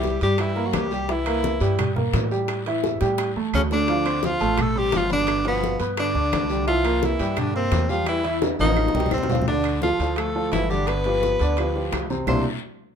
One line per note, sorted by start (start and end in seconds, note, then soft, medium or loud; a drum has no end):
0.00 0.16 C2 medium
0.00 0.15 E3 medium
0.00 0.21 G3 medium
0.00 0.15 E4 medium
0.00 0.22 G4 medium
0.00 0.15 E5 medium
0.00 high bongo medium
0.00 high conga medium
0.00 short guiro medium
0.04 low timbale medium
0.21 0.70 G2 medium
0.21 0.41 G3 medium
0.21 0.51 G3 medium
0.21 0.51 G4 medium
0.21 0.42 G4 loud
0.21 0.51 G5 medium
0.21 high timbale medium
0.21 short guiro medium
0.38 0.67 E3 medium
0.38 0.67 E4 medium
0.38 high bongo medium
0.38 high conga soft
0.38 high timbale medium
0.38 long guiro medium
0.38 claves medium
0.56 0.85 A#3 medium
0.56 0.85 A#4 medium
0.56 0.85 A#5 medium
0.56 high bongo soft
0.56 high conga soft
0.66 0.76 F#3 medium
0.66 0.75 F#4 medium
0.73 1.55 C2 medium
0.73 1.11 G3 medium
0.73 1.13 G4 medium
0.73 high bongo medium
0.73 low bongo medium
0.73 high conga medium
0.73 high timbale medium
0.73 low timbale medium
0.73 short guiro medium
0.73 claves medium
0.91 1.06 G3 medium
0.91 1.06 G4 medium
0.91 1.06 G5 medium
0.91 high bongo soft
0.91 short guiro medium
1.08 1.23 E3 medium
1.08 1.79 E3 medium
1.08 1.23 E4 medium
1.08 1.80 E4 medium
1.08 1.23 E5 medium
1.08 high bongo medium
1.08 high conga soft
1.08 long guiro medium
1.26 1.55 A#3 medium
1.26 1.55 A#4 medium
1.26 1.55 A#5 medium
1.26 high conga soft
1.26 high timbale medium
1.26 claves medium
1.43 high bongo medium
1.43 high conga loud
1.43 low timbale medium
1.43 short guiro medium
1.60 2.10 G2 medium
1.60 1.90 G3 medium
1.60 1.90 G4 medium
1.60 1.90 G5 medium
1.60 high timbale medium
1.60 short guiro medium
1.79 high bongo medium
1.79 high conga soft
1.79 low conga medium
1.79 high timbale medium
1.79 long guiro medium
1.79 claves medium
1.96 2.24 A#3 medium
1.96 2.25 A#4 medium
1.96 2.25 A#5 medium
1.96 high conga soft
1.96 low conga medium
2.14 2.95 A2 medium
2.14 high bongo medium
2.14 low bongo medium
2.14 high conga medium
2.14 high timbale medium
2.14 low timbale medium
2.14 short guiro medium
2.31 2.60 G3 medium
2.31 2.60 G4 medium
2.31 2.60 G5 medium
2.31 short guiro medium
2.48 high bongo medium
2.48 high conga soft
2.48 high timbale medium
2.48 long guiro medium
2.48 claves medium
2.66 2.95 E3 medium
2.66 2.95 E4 medium
2.66 2.95 E5 medium
2.66 high bongo soft
2.66 high conga soft
2.66 high timbale medium
2.84 high bongo medium
2.84 high conga medium
2.84 low timbale medium
2.84 short guiro medium
3.01 3.34 A2 medium
3.01 3.30 G3 medium
3.01 3.30 G4 medium
3.01 3.30 G5 medium
3.01 high bongo medium
3.01 high timbale medium
3.01 short guiro medium
3.18 high bongo medium
3.18 high conga soft
3.18 high timbale medium
3.18 long guiro medium
3.18 claves medium
3.36 3.52 E2 medium
3.36 3.65 A3 medium
3.36 3.65 A4 medium
3.36 3.65 A5 medium
3.36 high conga soft
3.54 4.35 D2 medium
3.54 3.63 C#3 medium
3.54 3.62 C#4 medium
3.54 high conga medium
3.54 high timbale medium
3.54 low timbale medium
3.54 short guiro medium
3.54 claves medium
3.71 4.27 D3 medium
3.71 3.85 A3 medium
3.71 4.27 D4 loud
3.71 3.86 A4 medium
3.71 3.86 A5 medium
3.71 low bongo medium
3.71 short guiro medium
3.88 4.03 F3 medium
3.88 4.03 F4 medium
3.88 4.03 F5 medium
3.88 high bongo medium
3.88 high conga soft
3.88 long guiro medium
4.06 4.34 C4 medium
4.06 4.35 C5 medium
4.06 4.35 C6 medium
4.06 high conga soft
4.06 high timbale medium
4.06 claves medium
4.23 4.61 F3 medium
4.23 4.63 F4 loud
4.23 high bongo medium
4.23 high conga medium
4.23 low timbale medium
4.23 short guiro medium
4.40 4.89 A1 medium
4.40 4.69 A3 medium
4.40 4.69 A4 medium
4.40 4.69 A5 medium
4.40 high conga soft
4.40 high timbale medium
4.40 short guiro medium
4.57 4.78 A3 medium
4.57 high bongo medium
4.57 high conga soft
4.57 low conga medium
4.57 high timbale medium
4.57 long guiro medium
4.57 claves medium
4.62 4.80 A4 medium
4.75 4.96 G3 medium
4.75 5.04 C4 medium
4.75 4.98 G4 loud
4.75 5.04 C5 medium
4.75 5.04 C6 medium
4.75 high conga soft
4.92 5.74 G1 medium
4.92 5.11 F3 medium
4.92 high bongo medium
4.92 low bongo medium
4.92 high conga medium
4.92 high timbale medium
4.92 low timbale medium
4.92 short guiro medium
4.97 5.12 F4 medium
5.10 5.44 D3 medium
5.10 5.39 B3 medium
5.10 5.44 D4 loud
5.10 5.39 B4 medium
5.10 5.39 B5 medium
5.10 high conga medium
5.10 short guiro medium
5.27 high bongo medium
5.27 high conga soft
5.27 high timbale medium
5.27 long guiro medium
5.27 claves medium
5.45 5.79 B2 medium
5.45 5.74 F3 medium
5.45 5.79 B3 medium
5.45 5.74 F4 medium
5.45 5.74 F5 medium
5.45 high bongo soft
5.45 high conga soft
5.45 high timbale medium
5.62 high bongo medium
5.62 high conga medium
5.62 low timbale medium
5.62 short guiro medium
5.80 6.13 G2 medium
5.80 6.09 B3 medium
5.80 6.09 B4 medium
5.80 6.09 B5 medium
5.80 high timbale medium
5.80 short guiro medium
5.97 6.64 D3 medium
5.97 6.64 D4 medium
5.97 high bongo medium
5.97 high conga soft
5.97 high timbale medium
5.97 long guiro medium
5.97 claves medium
6.15 6.31 D2 medium
6.15 6.44 D4 medium
6.15 6.44 D5 medium
6.15 6.44 D6 medium
6.15 high bongo soft
6.15 high conga soft
6.32 7.14 C2 medium
6.32 high bongo medium
6.32 low bongo medium
6.32 high conga medium
6.32 high timbale medium
6.32 low timbale medium
6.32 short guiro medium
6.32 claves medium
6.50 6.64 G3 medium
6.50 6.64 G4 medium
6.50 6.64 G5 medium
6.50 high bongo soft
6.50 short guiro medium
6.66 6.81 E3 medium
6.66 7.05 F3 medium
6.66 6.81 E4 medium
6.66 7.06 F4 medium
6.66 6.81 E5 medium
6.66 high bongo medium
6.66 high conga soft
6.66 long guiro medium
6.84 7.13 A#3 medium
6.84 7.13 A#4 medium
6.84 7.14 A#5 medium
6.84 high conga soft
6.84 high timbale medium
6.84 claves medium
7.02 7.40 E3 medium
7.02 7.41 E4 medium
7.02 high bongo medium
7.02 high conga medium
7.02 low timbale medium
7.02 short guiro medium
7.19 7.68 G2 medium
7.19 7.48 G3 medium
7.19 7.48 G4 medium
7.19 7.49 G5 medium
7.19 high conga soft
7.19 high timbale medium
7.19 short guiro medium
7.37 7.55 D3 medium
7.37 7.55 D4 medium
7.37 high bongo medium
7.37 high conga soft
7.37 low conga medium
7.37 high timbale medium
7.37 long guiro medium
7.37 claves medium
7.54 7.91 C3 medium
7.54 7.83 A#3 medium
7.54 7.91 C4 medium
7.54 7.83 A#4 medium
7.54 7.83 A#5 medium
7.54 high conga soft
7.71 8.53 E2 medium
7.71 high bongo medium
7.71 low bongo medium
7.71 high conga medium
7.71 high timbale medium
7.71 low timbale medium
7.71 short guiro medium
7.89 8.07 F3 medium
7.89 8.18 G3 medium
7.89 8.07 F4 medium
7.89 8.18 G4 medium
7.89 8.19 G5 medium
7.89 high conga medium
7.89 short guiro medium
8.06 8.40 E3 medium
8.06 8.40 E4 medium
8.06 high bongo medium
8.06 high conga soft
8.06 high timbale medium
8.06 long guiro medium
8.06 claves medium
8.24 8.53 E3 medium
8.24 8.53 E4 medium
8.24 8.53 E5 medium
8.24 high bongo soft
8.24 high conga soft
8.24 high timbale medium
8.42 high bongo medium
8.42 high conga medium
8.42 high timbale medium
8.42 short guiro medium
8.59 8.92 A1 medium
8.59 9.09 D#3 medium
8.59 8.88 F3 medium
8.59 9.09 D#4 medium
8.59 8.88 F4 medium
8.59 8.89 F5 medium
8.59 high conga medium
8.59 short guiro medium
8.65 high timbale medium
8.72 high conga medium
8.72 low timbale medium
8.76 high bongo medium
8.76 long guiro medium
8.76 claves medium
8.88 high bongo medium
8.94 9.10 C2 medium
8.94 9.23 G3 medium
8.94 9.24 G4 medium
8.94 9.24 G5 medium
8.94 low conga medium
8.99 high bongo medium
8.99 low timbale medium
9.06 low conga medium
9.11 9.93 D2 medium
9.11 9.45 C4 medium
9.11 low bongo medium
9.11 low timbale medium
9.11 short guiro medium
9.11 claves medium
9.15 9.46 C3 medium
9.15 low conga medium
9.23 low bongo medium
9.23 low timbale medium
9.30 9.44 F3 medium
9.30 9.44 F4 medium
9.30 9.45 F5 medium
9.30 low conga loud
9.30 short guiro medium
9.35 low bongo medium
9.35 low timbale medium
9.41 low conga medium
9.47 9.76 D3 medium
9.47 9.81 D3 medium
9.47 9.76 D4 medium
9.47 9.80 D4 medium
9.47 9.76 D5 medium
9.47 high bongo medium
9.47 high conga soft
9.47 long guiro medium
9.64 high conga soft
9.64 high timbale medium
9.64 claves medium
9.82 9.97 F3 medium
9.82 10.20 F3 medium
9.82 10.18 F4 medium
9.82 9.97 F4 medium
9.82 9.97 A4 medium
9.82 high bongo medium
9.82 high conga medium
9.82 low timbale medium
9.82 short guiro medium
9.99 10.48 D2 medium
9.99 10.29 F3 medium
9.99 10.29 F4 medium
9.99 10.29 A4 medium
9.99 high conga soft
9.99 high timbale medium
9.99 short guiro medium
10.16 10.53 A3 medium
10.16 10.52 A4 medium
10.16 high bongo medium
10.16 high conga soft
10.16 high timbale medium
10.16 long guiro medium
10.16 claves medium
10.35 10.64 F3 medium
10.35 10.64 F4 medium
10.35 10.64 A4 medium
10.35 high conga soft
10.52 11.34 G1 medium
10.52 10.73 E3 medium
10.52 10.71 E4 medium
10.52 high bongo medium
10.52 low bongo medium
10.52 high conga medium
10.52 high timbale medium
10.52 low timbale medium
10.52 short guiro medium
10.70 10.99 D3 medium
10.70 10.91 G3 medium
10.70 10.99 D4 medium
10.70 10.89 G4 medium
10.70 10.99 D5 medium
10.70 high conga medium
10.70 short guiro medium
10.87 11.94 B3 medium
10.87 11.93 B4 medium
10.87 high bongo medium
10.87 high conga soft
10.87 high timbale medium
10.87 long guiro medium
10.87 claves medium
11.04 11.34 F3 medium
11.04 11.34 F4 medium
11.04 11.34 G4 medium
11.04 high bongo soft
11.04 high conga soft
11.04 high timbale medium
11.22 high bongo medium
11.22 high conga medium
11.22 low timbale medium
11.22 short guiro medium
11.39 11.89 D2 medium
11.39 11.55 D3 medium
11.39 11.55 D4 medium
11.39 11.55 D5 medium
11.39 high timbale medium
11.39 short guiro medium
11.57 11.73 F3 medium
11.57 11.73 F4 medium
11.57 11.73 G4 medium
11.57 high bongo medium
11.57 high conga soft
11.57 high timbale medium
11.57 long guiro medium
11.57 claves medium
11.75 12.04 F3 medium
11.75 12.04 F4 medium
11.75 12.04 G4 medium
11.75 high bongo soft
11.75 high conga soft
11.92 12.23 C2 medium
11.92 high bongo medium
11.92 low bongo medium
11.92 high conga medium
11.92 high timbale medium
11.92 low timbale medium
11.92 short guiro medium
11.92 claves medium
12.10 12.24 C3 medium
12.10 12.25 C4 medium
12.10 12.25 C5 medium
12.10 high bongo soft
12.10 high conga medium
12.10 short guiro medium
12.27 12.43 C2 medium
12.27 12.44 C3 medium
12.27 12.44 G3 medium
12.27 12.44 A#3 medium
12.27 12.44 C4 medium
12.27 12.44 D4 medium
12.27 12.44 E4 medium
12.27 12.44 C5 medium
12.27 low bongo medium
12.27 low conga medium
12.27 low timbale medium
12.27 long guiro loud
12.27 claves medium